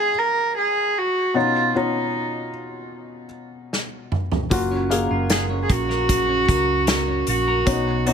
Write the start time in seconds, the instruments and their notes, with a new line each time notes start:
Already playing: felt piano F#3 A#3 D#4 F4, cello G#4
0.18 cello A#4
0.58 cello G#4
0.98 cello F#4
1.34 felt piano B2 B3 C#4 D#4, cello F4
1.74 felt piano B3 C#4 F4, cello D#4
3.73 snare
4.12 mid tom
4.32 floor tom
4.50 fingered electric bass F#1, clean electric guitar F#2, felt piano A#3 F4 F#4, kick, closed hi-hat
4.71 clean electric guitar C#4
4.90 felt piano A#3 G#4 F5, clean electric guitar A#4, closed hi-hat
5.11 fingered electric bass F#1, clean electric guitar F4
5.30 cello G#4, clean electric guitar A#4, snare, closed hi-hat
5.50 clean electric guitar C#4
5.63 cello G#4
5.70 fingered electric bass A#1, cello F#4, kick, closed hi-hat
5.89 clean electric guitar A#4, snare
6.09 clean electric guitar F#2, kick, closed hi-hat
6.29 clean electric guitar C#4
6.49 fingered electric bass C#2, clean electric guitar A#4, kick, closed hi-hat
6.87 clean electric guitar A#4, snare, closed hi-hat
7.08 clean electric guitar C#4
7.27 fingered electric bass A#1, cello F#4, closed hi-hat
7.48 clean electric guitar A#4
7.66 fingered electric bass B1, felt piano B2 B3 C#4 D#4, clean electric guitar B2, kick, closed hi-hat
7.87 clean electric guitar B3
8.06 felt piano B3 C#4 D#4, cello D#4, clean electric guitar F#4, closed hi-hat